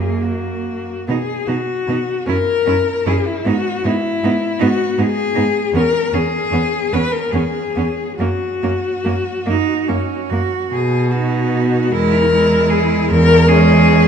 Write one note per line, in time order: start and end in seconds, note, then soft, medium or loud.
0.00 0.87 F#2 soft
0.00 0.40 A#3 soft
0.00 0.83 A#3 soft
0.00 0.22 G#4 medium
0.21 1.08 F#4 medium
1.08 1.17 B2 medium
1.08 1.16 B3 soft
1.08 1.18 D#4 medium
1.08 1.48 G#4 medium
1.47 1.56 B2 medium
1.47 1.56 B3 soft
1.47 1.56 D#4 medium
1.47 2.27 F#4 medium
1.88 1.96 B2 medium
1.88 1.97 B3 medium
1.88 1.98 D#4 soft
2.26 2.36 F#2 medium
2.26 2.34 C#4 medium
2.26 2.37 E4 medium
2.26 3.08 A#4 loud
2.66 2.75 F#2 medium
2.66 2.74 C#4 medium
2.66 2.75 E4 medium
3.06 3.15 F#2 medium
3.06 3.14 C#4 medium
3.06 3.15 E4 medium
3.06 3.28 G#4 medium
3.27 3.48 E4 medium
3.45 3.53 G#2 medium
3.45 3.53 B3 medium
3.45 3.55 D#4 medium
3.45 3.87 F#4 medium
3.84 3.92 G#2 medium
3.84 3.93 B3 medium
3.84 3.94 D#4 medium
3.84 4.62 E4 medium
4.23 4.31 G#2 medium
4.23 4.32 B3 medium
4.23 4.32 D#4 medium
4.59 4.69 G#2 medium
4.59 4.69 B3 medium
4.59 4.67 D#4 medium
4.59 5.01 F#4 loud
4.98 5.06 G#2 medium
4.98 5.07 B3 medium
4.98 5.06 D#4 medium
4.98 5.75 G#4 loud
5.35 5.45 G#2 medium
5.35 5.44 B3 medium
5.35 5.43 D#4 medium
5.73 5.81 E2 medium
5.73 5.83 B3 medium
5.73 5.83 C#4 medium
5.73 6.15 A#4 loud
6.13 6.21 E2 medium
6.13 6.22 B3 medium
6.13 6.22 C#4 medium
6.13 6.94 G#4 loud
6.51 6.59 E2 medium
6.51 6.61 B3 medium
6.51 6.59 C#4 soft
6.92 7.00 E2 medium
6.92 7.01 B3 medium
6.92 7.02 C#4 medium
6.92 7.13 B4 loud
7.11 7.33 A#4 medium
7.31 7.41 E2 medium
7.31 7.41 B3 medium
7.31 7.42 C#4 medium
7.31 8.17 G#4 medium
7.76 7.84 E2 medium
7.76 7.84 B3 medium
7.76 7.86 C#4 medium
8.18 8.27 F#2 medium
8.18 8.28 A#3 medium
8.18 8.28 C#4 medium
8.18 10.26 F#4 medium
8.63 8.71 F#2 medium
8.63 8.71 A#3 soft
8.63 8.71 C#4 medium
9.05 9.13 F#2 medium
9.05 9.13 A#3 medium
9.05 9.14 C#4 soft
9.46 9.55 F#2 medium
9.46 9.54 A#3 medium
9.46 9.90 D#4 medium
9.88 9.97 F#2 medium
9.88 9.96 A#3 medium
9.88 10.32 C#4 medium
10.30 10.38 F#2 medium
10.30 10.40 A#3 soft
10.30 10.72 F#4 medium
10.71 11.78 B2 medium
10.71 11.12 G#4 medium
11.10 11.90 B3 medium
11.10 11.91 D#4 medium
11.10 11.93 F#4 medium
11.91 12.96 E2 medium
11.91 12.30 G#3 medium
11.91 12.31 E4 medium
11.91 12.71 A#4 loud
12.32 13.08 G#3 medium
12.32 13.09 E4 medium
12.70 13.09 G#4 medium
13.09 14.08 E2 loud
13.09 13.50 A#4 loud
13.47 14.08 G#3 medium
13.47 14.08 C#4 medium
13.47 14.08 G#4 loud